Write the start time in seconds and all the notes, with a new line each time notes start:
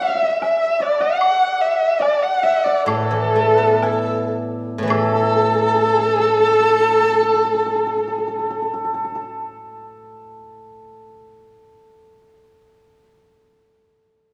Already playing: D5 E5
0.01 E5 F#5
0.08 F#5
0.15 F#5
0.22 F#5
0.41 E5, low woodblock
0.80 D5 F#6 A6
0.86 D6 E6
0.93 A5 B5
0.98 F#5
1.21 high woodblock
1.61 E5
1.99 D5, low woodblock
2.12 A5
2.20 F#5
2.43 E5
2.64 D5
2.86 A2 A4, high woodblock
2.97 B4
3.05 A4
3.11 E3 B4
3.22 A4
3.33 A3 B4
3.42 A4
3.55 B3 B4
3.64 A4
3.73 B4
3.82 E4 A4, low woodblock
4.78 A2 B4
4.83 E3
4.87 A3 A4, high woodblock
4.92 A4
5.02 A4
5.12 A4
5.23 A4
5.35 A4
5.44 A4
5.55 A4
5.66 A4
5.76 A4
5.87 A4
5.99 A4
6.09 A4
6.19 A4
6.29 A4
6.40 A4
6.51 A4
6.60 A4
6.80 A4
6.91 A4
7.02 A4
7.12 A4
7.23 A4
7.34 A4
7.45 A4
7.54 A4
7.66 A4
7.76 A4
7.87 A4
7.97 A4
8.08 A4
8.18 A4
8.28 A4
8.39 A4
8.50 A4
8.62 A4
8.74 A4
8.84 A4
8.94 A4
9.05 A4
9.15 A4